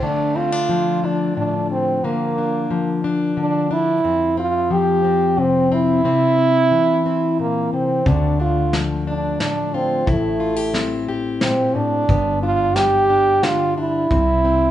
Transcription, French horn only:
0.03 D4
0.37 F4
1.05 D4
1.37 D4
1.71 C4
2.04 A#3
3.39 D4
3.73 E4
4.39 F4
4.72 G4
5.39 C4
5.73 E4
7.40 A#3
7.73 C4
8.08 D4
8.41 F4
9.08 D4
9.42 D4
9.74 C4
10.09 A3
11.42 C4
11.75 D4
12.43 F4
12.76 G4
13.44 F4
13.78 E4

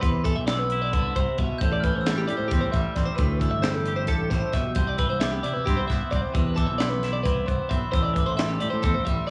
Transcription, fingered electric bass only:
0.03 E2
0.36 B1
0.94 C2
1.16 C2
1.38 C2
1.61 A1
1.96 A1
2.29 A2
2.39 A2
2.52 E2
2.62 A1
2.74 A1
2.97 A1
3.19 D2
3.52 G1
4.08 A1
4.31 A1
4.54 B1
4.76 C2
5.10 C2
5.44 C3
5.56 C3
5.68 G2
5.79 C2
5.90 C2
6.12 C2
6.35 E2
6.69 B1
7.26 C2
7.49 C2
7.71 B1
7.94 A1
8.28 A1
8.63 A2
8.73 A2
8.84 E2
8.96 A1
9.07 A1

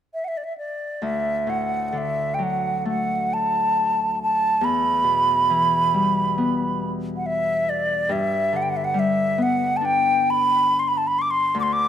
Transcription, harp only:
1.02 D2
1.47 A2
1.93 D3
2.39 F#3
2.85 A3
4.61 E2
5.04 B2
5.50 E3
5.94 G3
6.38 B3
8.09 G2
8.53 D3
8.94 G3
9.38 B3
9.81 D4
11.55 D2

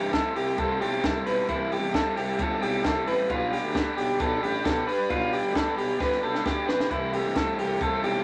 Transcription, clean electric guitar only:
Already playing: G4
0.13 A4
0.36 G4
0.58 A4
0.81 G4
1.04 A4
1.26 B4
1.49 E4
1.72 G4
1.95 A4
2.17 G4
2.40 A4
2.62 G4
2.85 A4
3.08 B4
3.30 F4
3.52 G4
3.75 A4
3.97 G4
4.20 A4
4.43 G4
4.65 A4
4.88 B4
5.10 F4
5.33 G4
5.55 A4
5.78 G4
6.00 B4
6.23 A4
6.45 G4
6.68 B4
6.91 E4
7.14 G4
7.36 A4
7.59 G4
7.81 A4
8.04 G4

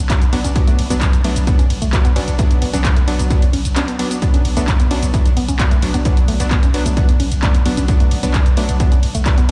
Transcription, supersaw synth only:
0.10 F#3 B3 D4
0.33 F#3 B3 D4
0.56 F#3 B3 D4
0.90 F#3 B3 D4
1.24 F#3 B3 D4
1.47 F#3 B3 D4
1.93 F#3 B3 D4
2.16 F#3 B3 D4
2.39 F#3 B3 D4
2.74 F#3 B3 D4
3.08 F#3 B3 D4
3.31 F#3 B3 D4
3.76 F#3 B3 D4
3.99 F#3 B3 D4
4.22 F#3 B3 D4
4.57 F#3 B3 D4
4.91 F#3 B3 D4
5.14 F#3 B3 D4
5.60 F#3 B3 D4
5.83 F#3 B3 D4
6.05 F#3 B3 D4
6.40 F#3 B3 D4
6.74 F#3 B3 D4
6.97 F#3 B3 D4
7.43 F#3 B3 D4
7.66 F#3 B3 D4
7.89 F#3 B3 D4
8.23 F#3 B3 D4
8.57 F#3 B3 D4
8.80 F#3 B3 D4
9.26 F#3 B3 D4

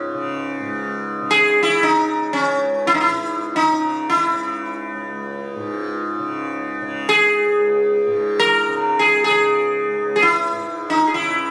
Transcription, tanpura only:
Already playing: C#2 G#2 C#3
0.14 C#3
0.59 G#2
1.21 C#3
1.82 C#3
2.45 C#2
3.08 G#2
3.72 C#3
4.33 C#3
4.94 C#2
5.56 G#2
6.19 C#3
6.81 C#3
7.44 C#2
8.06 G#2
8.68 C#3
9.29 C#3
9.91 C#2
10.51 G#2
11.14 C#3

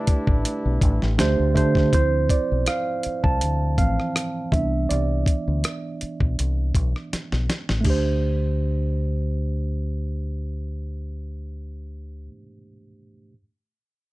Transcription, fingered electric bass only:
0.09 muted fingered electric bass stroke
0.28 A1
0.65 B1
0.83 A1
1.03 A1
1.20 D2
1.40 D2
1.57 D3
1.94 D2
2.52 B1
3.06 muted fingered electric bass stroke
3.25 C2
3.43 D2
3.79 A1
4.53 C2
4.91 C2
5.48 D2
6.03 muted fingered electric bass stroke
6.21 B1
6.40 C2
6.76 B1
7.13 muted fingered electric bass stroke
7.33 B1
7.70 A1
7.86 D2

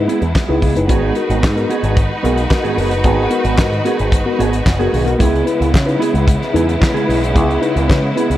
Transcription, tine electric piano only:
0.09 E4 B4
0.49 D#4 E4 B4
0.63 C#3 G#3
0.76 D#4 E4 B4
0.89 G#2 D#3
1.16 F#4 A#4
1.56 B3 F#4 A#4
1.83 G#2 D#3
1.96 G#2 D#3
2.23 B3 F#4 A#4
2.37 F#4 A#4
2.50 F#4 A#4
2.63 G#2 D#3
2.76 F#4 A#4
3.04 G#2 D#3
3.17 F#4 A#4
3.31 B3 F#4 A#4
3.57 F#4 A#4
3.71 G#2 D#3
3.84 F#4 A#4
4.12 G#2 D#3
4.25 B3 F#4 A#4
4.39 F#4 A#4
4.80 B3 F#4 A#4
4.93 G#2 D#3
5.06 B3 F#4 A#4
5.18 C#3 G#3
5.46 E4 B4
5.86 D#4 E4 B4
6.14 C#3 G#3
6.27 C#3 G#3
6.53 D#4 E4 B4
6.67 E4 B4
6.80 E4 B4
6.94 C#3 G#3
7.07 E4 B4
7.34 C#3 G#3
7.49 E4 B4
7.61 D#4 E4 B4
7.89 E4 B4
8.02 C#3 G#3
8.16 E4 B4

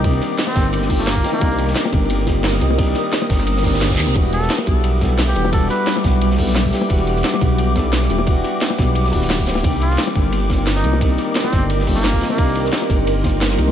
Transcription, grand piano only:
Already playing: D#3 G3 A#3 C4 D4 D#4 F4
0.03 D#3 G3 A#3 C4 D4
0.55 D#3 G3 A#3 C4 D4
0.89 D#3 G3 A#3 C4 F4
1.24 D#3 G3 A#3 C4 D#4
1.40 D#3 G3 A#3 C4 D4
1.92 D#3 G3 A#3 C4 D4
2.26 D#3 G3 A#3 C4 F4
2.61 D#3 G3 A#3 C4 D#4
2.77 D#3 G3 A#3 C4 D4
3.29 D#3 G3 A#3 C4 D4
3.63 D#3 G3 A#3 C4 D4
4.14 G3 B3 D4 E4 F#4
4.66 G3 B3 D4 E4 F#4
5.01 G3 B3 D4 E4 A4
5.35 G3 B3 D4 E4 G4
5.51 G3 B3 D4 E4 F#4
6.03 G3 B3 D4 E4 F#4
6.38 G3 B3 D4 E4 A4
6.72 G3 B3 D4 E4 G4
6.88 G3 B3 D4 E4 F#4
7.41 G3 B3 D4 E4 F#4
7.75 G3 B3 D4 E4 A4
8.09 G3 B3 D4 E4 G4
8.26 G3 B3 D4 E4 F#4
8.78 G3 B3 D4 E4 F#4
9.11 G3 B3 D4 E4 F#4
9.63 D#3 G3 A#3 C4 D4
10.15 D#3 G3 A#3 C4 D4
10.49 D#3 G3 A#3 C4 F4
10.83 D#3 G3 A#3 C4 D#4
11.00 D#3 G3 A#3 C4 D4
11.52 D#3 G3 A#3 C4 D4
11.86 D#3 G3 A#3 C4 F4
12.21 D#3 G3 A#3 C4 D#4
12.37 D#3 G3 A#3 C4 D4
12.89 D#3 G3 A#3 C4 D4
13.23 D#3 G3 A#3 C4 F4
13.58 D#3 G3 A#3 C4 D#4

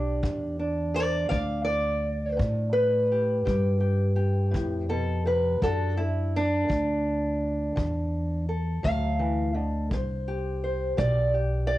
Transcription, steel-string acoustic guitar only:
Already playing: D4 G4
0.23 G2
0.59 D4
0.94 A#4 D5
1.29 G2 D5 F5
1.64 D5
2.37 G2
2.73 B4
3.12 G4
3.45 G2 G4
3.80 G4
4.16 G4
4.51 A2
4.89 B2 A4
5.26 C3 B4
5.62 D3 D4 F#4 A4
5.97 E4
6.36 D4
6.69 D3
7.76 D3
8.49 A4
8.83 F#3 F5
9.19 E3
9.54 D3 D#5
9.93 C3 C5
10.28 G4
10.64 C5
10.97 C3 D5
11.34 G4
11.67 D5

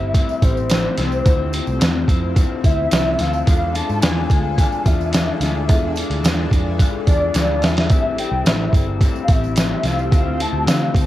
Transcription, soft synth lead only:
Already playing: E5
0.43 C5
0.99 C5
2.65 E5
3.20 F5
3.48 F5
3.75 A5
4.02 G#5
4.30 G#5
4.87 E5
5.41 E5
7.08 D5
7.63 E5
7.91 E5
8.19 G5
8.48 E5
9.23 F5
9.32 E5
9.86 F5
10.15 F5
10.41 A5
10.68 F5

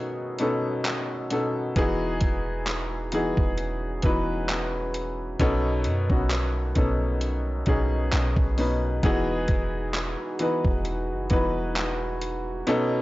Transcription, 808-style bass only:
1.76 E1
2.21 E1
3.37 E1
4.03 E1
5.40 B1
5.86 F#2
6.10 B1
6.76 B1
7.67 B1
8.13 B1
8.37 B1
9.03 E1
9.49 E1
10.65 E1
11.10 F#1
11.31 E1

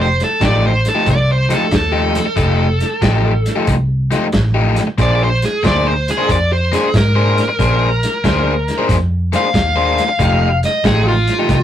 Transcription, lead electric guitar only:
0.01 C5
0.24 A4
0.45 D5
0.67 C5
0.88 A4
1.10 D5
1.32 C5
1.54 A4
1.75 A4
5.01 D5
5.24 C5
5.45 G#4
5.66 D5
5.88 C5
6.10 G#4
6.31 D5
6.53 C5
6.75 G#4
6.97 A#4
9.36 F5
10.65 D#5
10.86 G#4
11.08 F4

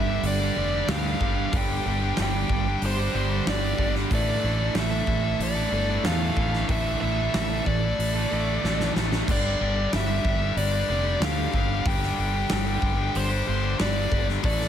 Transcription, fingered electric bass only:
Already playing: G1
0.23 G1
0.56 F1
0.88 D2
1.21 G1
1.53 G1
1.85 G1
2.18 G1
2.49 G1
2.82 G1
3.14 G1
3.46 G1
3.79 G1
4.12 A1
4.44 A1
4.75 A1
5.08 A1
5.39 A1
5.72 G1
6.04 E2
6.37 A1
6.69 A1
7.01 A1
7.35 A1
7.67 A1
7.99 A1
8.32 A1
8.63 A1
8.96 A1
9.28 G1
9.61 G1
9.93 G1
10.25 G1
10.56 G1
10.89 F1
11.20 D2
11.54 G1
11.86 G1
12.18 G1
12.51 G1
12.82 G1
13.15 G1
13.48 G1
13.80 G1
14.12 G1
14.45 A1

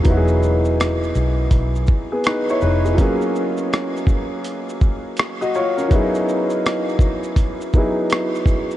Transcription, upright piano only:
0.04 F#3 B3 D#4
0.09 E4 F#4
0.17 G#4
2.12 B3 G#4
2.26 D#4 B4
2.51 E4 C#5
2.62 D#4 B4
2.85 B3 G#4
2.95 F#3 A#3 C#4
3.00 F4 G#4
5.41 F#4 D#5
5.55 F4 C#5
5.76 C#4 A#4
5.88 F#3 B3 D#4
5.94 E4 G#4
7.74 F#3 B3 D#4 E4 G#4

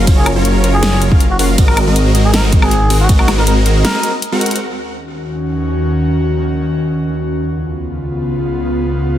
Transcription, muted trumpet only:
0.17 G#4
0.74 G#4
1.30 F#4
1.39 F#4
1.68 A#4
2.25 G#4
2.34 A#4
2.62 G#4
3.00 F#4
3.19 F#4
3.38 A#4
3.47 A#4
3.85 A#4

